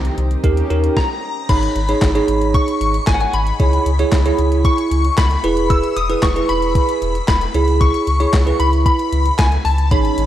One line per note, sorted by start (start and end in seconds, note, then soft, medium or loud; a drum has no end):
0.00 0.95 D#3 medium
0.00 0.93 G3 medium
0.00 0.93 A#3 medium
0.00 0.43 C4 medium
0.00 0.40 G4 medium
0.05 closed hi-hat medium
0.18 0.36 C2 loud
0.18 closed hi-hat medium
0.31 closed hi-hat soft
0.44 0.62 D#2 loud
0.44 0.96 C#4 medium
0.44 0.65 D#4 medium
0.44 0.65 G4 medium
0.44 0.96 G4 medium
0.44 0.65 A#4 loud
0.44 kick loud
0.44 closed hi-hat medium
0.57 closed hi-hat medium
0.70 0.89 D#2 loud
0.70 0.97 D#4 medium
0.70 0.97 G4 medium
0.70 0.97 A#4 loud
0.70 closed hi-hat medium
0.84 closed hi-hat medium
0.97 1.46 A#5 medium
0.97 kick loud
0.97 snare medium
1.49 1.68 G#1 loud
1.49 1.79 D#4 medium
1.49 1.79 G#4 medium
1.49 1.79 C#5 medium
1.49 2.58 B5 loud
1.49 kick loud
1.49 closed hi-hat medium
1.49 crash loud
1.63 closed hi-hat medium
1.76 1.94 G#1 loud
1.76 closed hi-hat medium
1.89 2.09 D#4 medium
1.89 2.09 G#4 medium
1.89 2.09 C#5 medium
1.89 closed hi-hat medium
2.02 2.20 G#1 loud
2.02 kick loud
2.02 snare loud
2.02 clap loud
2.02 closed hi-hat medium
2.15 2.94 D#4 medium
2.15 2.94 G#4 medium
2.15 2.94 C#5 loud
2.15 closed hi-hat medium
2.28 2.56 G#1 loud
2.28 closed hi-hat medium
2.41 closed hi-hat soft
2.54 3.09 C#6 loud
2.54 kick loud
2.54 closed hi-hat medium
2.68 closed hi-hat medium
2.81 2.99 G#1 loud
2.81 closed hi-hat medium
2.94 closed hi-hat medium
3.07 3.26 G#1 loud
3.07 3.14 G#5 loud
3.07 kick loud
3.07 snare loud
3.07 clap loud
3.07 closed hi-hat medium
3.14 3.21 F#5 medium
3.20 3.34 G#5 medium
3.20 closed hi-hat medium
3.33 3.52 G#1 loud
3.33 4.69 B5 loud
3.33 closed hi-hat medium
3.47 closed hi-hat medium
3.60 3.78 C#2 loud
3.60 3.89 E4 medium
3.60 3.89 G#4 medium
3.60 3.89 C#5 medium
3.60 kick loud
3.60 closed hi-hat medium
3.73 closed hi-hat medium
3.86 4.04 C#2 loud
3.86 closed hi-hat medium
3.99 4.19 E4 loud
3.99 4.19 G#4 medium
3.99 4.19 C#5 loud
3.99 closed hi-hat medium
4.12 4.31 C#2 loud
4.12 kick loud
4.12 snare loud
4.12 clap loud
4.12 closed hi-hat medium
4.26 5.05 E4 medium
4.26 5.05 G#4 medium
4.26 5.05 C#5 loud
4.26 closed hi-hat medium
4.39 4.66 C#2 medium
4.39 closed hi-hat medium
4.52 closed hi-hat soft
4.65 5.19 C#6 loud
4.65 kick loud
4.65 closed hi-hat medium
4.78 closed hi-hat medium
4.91 5.10 C#2 loud
4.91 closed hi-hat medium
5.05 closed hi-hat medium
5.18 5.36 C#2 loud
5.18 5.72 B5 loud
5.18 kick loud
5.18 snare loud
5.18 clap loud
5.18 closed hi-hat medium
5.31 closed hi-hat medium
5.44 5.81 E1 loud
5.44 5.96 E4 medium
5.44 5.97 G#4 medium
5.44 5.97 B4 loud
5.44 closed hi-hat medium
5.57 closed hi-hat medium
5.70 5.95 E6 loud
5.70 kick loud
5.70 closed hi-hat medium
5.84 closed hi-hat medium
5.96 6.15 E1 loud
5.96 6.24 D#6 loud
5.96 closed hi-hat medium
6.10 6.29 E4 medium
6.10 6.29 G#4 medium
6.10 6.29 B4 medium
6.10 closed hi-hat medium
6.23 6.41 E1 loud
6.23 6.50 C#6 loud
6.23 kick loud
6.23 snare loud
6.23 clap loud
6.23 closed hi-hat medium
6.36 7.15 E4 medium
6.36 7.15 G#4 medium
6.36 7.15 B4 medium
6.36 closed hi-hat medium
6.49 6.77 E1 loud
6.49 7.27 B5 loud
6.49 closed hi-hat medium
6.62 closed hi-hat soft
6.75 kick loud
6.75 closed hi-hat medium
6.89 closed hi-hat medium
7.02 7.20 E1 loud
7.02 closed hi-hat medium
7.15 closed hi-hat medium
7.28 7.47 E1 loud
7.28 7.77 B5 loud
7.28 kick loud
7.28 snare loud
7.28 clap medium
7.28 closed hi-hat medium
7.41 closed hi-hat medium
7.54 7.91 C#2 loud
7.54 8.07 E4 medium
7.54 8.07 G#4 medium
7.54 8.07 C#5 medium
7.54 closed hi-hat medium
7.68 closed hi-hat medium
7.81 8.62 C#6 loud
7.81 kick loud
7.81 closed hi-hat medium
7.94 closed hi-hat soft
8.07 8.26 C#2 medium
8.07 closed hi-hat medium
8.20 8.40 E4 medium
8.20 8.40 G#4 medium
8.20 8.40 C#5 medium
8.20 closed hi-hat medium
8.33 8.52 C#2 loud
8.33 kick loud
8.33 snare loud
8.33 clap loud
8.33 closed hi-hat medium
8.46 9.26 E4 medium
8.46 9.26 G#4 medium
8.46 9.26 B4 medium
8.46 closed hi-hat medium
8.60 8.87 C#2 loud
8.60 8.71 B5 loud
8.60 closed hi-hat medium
8.73 closed hi-hat soft
8.86 9.35 B5 loud
8.86 kick loud
8.86 closed hi-hat medium
8.99 closed hi-hat medium
9.12 9.31 C#2 loud
9.12 closed hi-hat medium
9.26 closed hi-hat medium
9.38 9.57 C#2 loud
9.38 9.50 G#5 medium
9.38 kick loud
9.38 snare loud
9.38 clap medium
9.38 closed hi-hat medium
9.52 closed hi-hat medium
9.65 9.93 C#2 loud
9.65 9.92 A5 medium
9.65 open hi-hat medium
9.78 closed hi-hat medium
9.91 10.10 G#1 loud
9.91 10.26 D#3 medium
9.91 10.26 G#3 medium
9.91 10.26 C#4 medium
9.91 10.21 D#4 medium
9.91 10.21 G#4 medium
9.91 10.21 C#5 medium
9.91 10.26 B5 loud
9.91 kick loud
9.91 closed hi-hat medium
10.05 closed hi-hat soft
10.18 10.26 G#1 loud
10.18 closed hi-hat medium